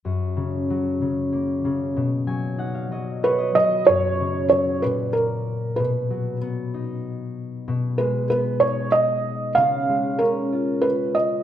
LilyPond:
<<
  \new Staff \with { instrumentName = "Felt piano" } { \time 3/4 \key fis \major \tempo 4 = 94 r2. | r2 b'8 dis''8 | cis''4 cis''8 b'8 ais'4 | b'4 r2 |
r8 b'8 b'8 cis''8 dis''4 | eis''4 ais'4 b'8 dis''8 | }
  \new Staff \with { instrumentName = "Harp" } { \time 3/4 \key fis \major r2. | r8 gis''8 fis''16 eis''16 dis''8 cis''16 dis''16 b'8 | r2. | r2. |
r2. | r2. | }
  \new Staff \with { instrumentName = "Harp" } { \clef bass \time 3/4 \key fis \major fis,8 cis8 fis8 cis8 ais8 cis8 | b,8 fis8 dis'8 fis8 fis'8 fis8 | fis,8 cis8 fis8 ais,4. | b,8 fis8 b8 dis'4. |
b,8 gis8 b8 dis'4. | cis8 gis8 cis'8 eis'4. | }
>>